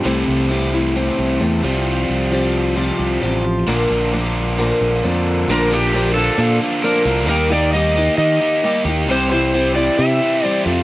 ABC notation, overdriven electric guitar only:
X:1
M:4/4
L:1/8
Q:1/4=133
K:Cmix
V:1 name="Overdriven electric guitar"
[C,E,A,CE]6- [C,E,A,CE] [C,F,G,CF]- | [C,F,G,CF]6- [C,F,G,CF] z | [B,,D,B,DF]8 | [B,,D,B,DF] [B,DF] [B,,D,B,DF] [B,DF] [B,,D,B,DF] [B,DF] [D,B,DF] [B,DF] |
[_E,B,_EG] [B,EG] [E,B,EG] [B,EG] [E,B,EG] [B,EG] [E,B,EG] [B,EG] | [C,E,G,CG] [G,CG] [C,E,G,CG] [G,CG] [C,E,G,CG] [G,CG] [E,G,CG] [F,,C,F,A,CF] |]